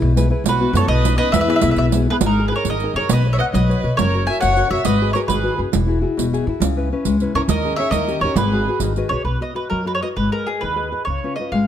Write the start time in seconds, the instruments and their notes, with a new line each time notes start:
Already playing: nylon-string guitar E4 G#4 B4
0.02 upright bass B1, nylon-string guitar B2
0.16 nylon-string guitar E4 G#4 B4, riq
0.30 nylon-string guitar E4 G#4 B4
0.44 upright bass B1, nylon-string guitar B2, riq
0.48 violin F#4, mandolin B4
0.61 nylon-string guitar B3 E4 F#4
0.73 upright bass F#2, nylon-string guitar B3 E4 F#4, violin A4, mandolin C#5, riq
0.88 upright bass B1, nylon-string guitar B2, violin B4, mandolin D#5
1.04 nylon-string guitar B3 C#4 D#4, riq
1.18 nylon-string guitar B3 C#4 D#4, violin B4, mandolin D#5
1.32 upright bass E2, nylon-string guitar E3, violin B4, mandolin E5, riq
1.41 mandolin E5
1.47 nylon-string guitar B3 E4 G#4, mandolin E5
1.56 mandolin E5
1.61 upright bass B1, nylon-string guitar B3 E4 G#4, mandolin E5, riq
1.71 mandolin E5
1.76 upright bass B1, nylon-string guitar B2, mandolin E5, riq
1.92 nylon-string guitar B3 E4 G#4, riq
2.10 nylon-string guitar B3 E4 G#4, violin G#4, mandolin B4
2.21 upright bass G#1, nylon-string guitar G#3, riq
2.26 violin D#4, mandolin A#4
2.39 nylon-string guitar D#4 G#4 A#4
2.46 violin G#4, mandolin B4
2.52 nylon-string guitar D#4 G#4 A#4, violin A#4, mandolin C#5
2.65 upright bass G#1, violin A#4, riq
2.69 nylon-string guitar D#3, mandolin D#5
2.80 nylon-string guitar D#4 G#4 A#4, riq
2.94 upright bass F#2, nylon-string guitar D#4 G#4 A#4, violin A#4, mandolin C#5
3.09 upright bass B1, nylon-string guitar B3, violin B4, mandolin D#5, riq
3.26 nylon-string guitar B4 C#5 D#5
3.33 violin C#5, mandolin E5
3.38 nylon-string guitar B4 C#5 D#5, violin D#5, mandolin F#5
3.53 upright bass B1, nylon-string guitar F#3, violin B4, mandolin D#5, riq
3.69 nylon-string guitar B4 C#5 D#5, riq
3.83 upright bass B2, nylon-string guitar B4 C#5 D#5
3.97 upright bass F#1, nylon-string guitar F#3, violin A#4, mandolin C#5, riq
4.14 nylon-string guitar F#4 A#4 C#5
4.27 nylon-string guitar F#4 A#4 C#5, violin E5, mandolin G#5
4.41 upright bass F#1, nylon-string guitar C#3, violin C#5, mandolin F#5, riq
4.56 nylon-string guitar F#4 A#4 C#5, riq
4.70 upright bass F#1, nylon-string guitar F#4 A#4 C#5, violin C#5, mandolin E5
4.85 upright bass G#1, nylon-string guitar G#3, violin B4, mandolin D#5, riq
5.02 nylon-string guitar F#4 G#4 B4
5.13 nylon-string guitar F#4 G#4 B4, violin A#4, mandolin C#5, riq
5.28 upright bass G#1, nylon-string guitar D#3, violin G#4, mandolin B4, riq
5.44 nylon-string guitar F#4 G#4 B4
5.57 upright bass F#1, nylon-string guitar F#4 G#4 B4
5.72 upright bass E1, nylon-string guitar E3, riq
5.87 nylon-string guitar E4 F#4 G#4
6.01 nylon-string guitar E4 F#4 G#4
6.17 upright bass E1, nylon-string guitar B2, riq
6.33 nylon-string guitar E4 F#4 G#4, riq
6.47 upright bass G#2, nylon-string guitar E4 F#4 G#4
6.60 upright bass C#2, nylon-string guitar C#3, riq
6.76 nylon-string guitar C#4 E4 B4
6.92 nylon-string guitar C#4 E4 B4
7.05 upright bass C#2, nylon-string guitar G#3, riq
7.20 nylon-string guitar C#4 E4 B4, riq
7.35 upright bass C#2, nylon-string guitar C#4 E4 B4, violin A#4, mandolin C#5
7.48 upright bass D#2, nylon-string guitar D#3, violin A#4, mandolin D#5, riq
7.64 nylon-string guitar C#4 D#4 G#4
7.76 nylon-string guitar C#4 D#4 G#4, violin C#5, mandolin E5
7.91 upright bass D#2, nylon-string guitar D#3, violin A#4, mandolin D#5, riq
8.07 nylon-string guitar C#4 D#4 G4, riq
8.21 upright bass D#2, nylon-string guitar C#4 D#4 G4, violin A#4, mandolin C#5
8.36 upright bass G#1, nylon-string guitar G#3, violin G#4, mandolin B4, riq
8.53 nylon-string guitar F#4 G#4 B4
8.68 nylon-string guitar F#4 G#4 B4
8.80 upright bass G#1, nylon-string guitar D#3, riq
8.96 nylon-string guitar F#4 G#4 B4 D#5, riq
9.09 upright bass A#1, nylon-string guitar F#4 G#4 B4, mandolin C#5
9.25 upright bass B1, nylon-string guitar B3, mandolin B4
9.40 nylon-string guitar F#4 B4 D#5, mandolin D#5
9.55 nylon-string guitar F#4 B4 D#5, mandolin B4
9.70 upright bass F#2, nylon-string guitar F#3, mandolin A#4
9.85 nylon-string guitar F#4 B4 D#5, mandolin B4
9.95 mandolin C#5
10.03 nylon-string guitar F#4 B4 D#5, mandolin D#5
10.16 upright bass G#1, nylon-string guitar G#3, mandolin B4
10.32 nylon-string guitar G#4 B4 D#5, mandolin A#4
10.47 mandolin G#4, nylon-string guitar G#4 B4 D#5
10.61 upright bass D#2, nylon-string guitar D#3, mandolin B4
10.76 nylon-string guitar G#4 B4 D#5
10.92 nylon-string guitar G#4 B4 D#5
11.05 upright bass C#2, mandolin C#5
11.09 nylon-string guitar C#3
11.24 nylon-string guitar C#4 F4 B4
11.36 nylon-string guitar C#4 F4, mandolin D#5
11.40 nylon-string guitar B4
11.52 upright bass G#1, nylon-string guitar G#3, mandolin F5